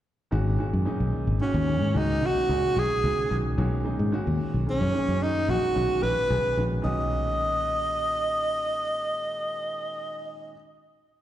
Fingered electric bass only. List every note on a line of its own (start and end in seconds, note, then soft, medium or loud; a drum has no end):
0.32 0.57 G#1 medium
0.73 0.85 F#2 medium
1.00 1.12 B1 medium
1.27 1.40 G#1 medium
1.54 1.81 D#2 medium
1.81 1.94 G#2 medium
1.95 2.23 C#2 medium
2.23 2.35 B1 medium
2.36 muted fingered electric bass stroke soft
2.49 2.62 C#2 medium
2.76 2.89 B1 medium
3.04 3.16 C#2 medium
3.17 muted fingered electric bass stroke soft
3.31 3.56 B1 medium
3.58 3.83 B1 medium
3.99 4.12 G#2 medium
4.27 4.39 D#2 medium
4.54 4.66 B1 medium
4.81 4.93 F#2 medium
5.08 5.50 F#2 medium
5.48 5.61 A#1 medium
5.76 5.88 B1 medium
6.03 6.15 A#1 medium
6.30 6.43 B1 medium
6.44 muted fingered electric bass stroke soft
6.57 6.82 A#1 medium
6.85 10.53 B1 medium